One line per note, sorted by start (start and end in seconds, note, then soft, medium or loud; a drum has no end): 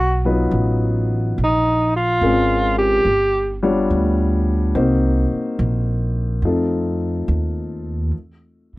0.00 0.49 B1 medium
0.00 0.27 F#4 medium
0.25 0.49 F#3 medium
0.25 0.49 B3 soft
0.25 0.49 D#4 soft
0.25 0.49 F4 medium
0.25 0.49 B4 medium
0.51 1.33 A1 medium
1.38 2.19 A#1 medium
1.44 1.93 D#4 medium
1.96 2.75 F4 medium
2.21 3.02 G#1 medium
2.21 2.72 G#3 medium
2.21 2.72 C4 soft
2.21 2.72 C#4 soft
2.21 2.72 F4 soft
2.21 2.72 A#4 medium
2.79 3.58 G4 medium
3.05 3.87 G1 medium
3.63 3.87 G3 medium
3.63 3.87 B3 medium
3.63 3.87 D4 medium
3.63 3.87 F4 medium
3.63 3.87 C#5 medium
3.90 4.72 D2 medium
4.75 5.27 C2 medium
4.75 5.25 A#3 medium
4.75 5.26 C4 soft
4.75 5.25 D#4 medium
4.75 5.25 F#4 soft
4.75 5.25 C5 medium
5.32 muted upright bass stroke soft
5.59 6.41 A#1 medium
6.42 7.25 F2 medium
6.42 6.95 A3 soft
6.42 6.95 C4 soft
6.42 6.95 D#4 soft
6.42 6.95 F4 soft
6.42 6.95 A4 medium
7.28 8.10 D#2 medium